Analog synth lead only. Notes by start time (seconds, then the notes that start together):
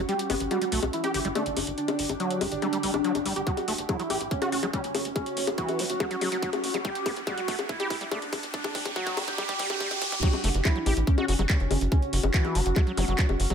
0.09 G4
0.51 F#4
0.93 E4
1.35 D4
1.78 D4
2.20 D4
2.52 D4
3.47 F#4
3.89 E4
4.31 C#4
4.73 C#4
5.16 C#4
5.58 F#4
5.90 F#4
6.85 G4
7.27 F#4
7.69 E4
8.11 D4
8.54 D4
8.96 F#4
9.28 G4
10.23 F#4
10.65 E4
11.07 C#4
11.50 C#4
11.92 C#4
12.34 F#4
12.66 F#4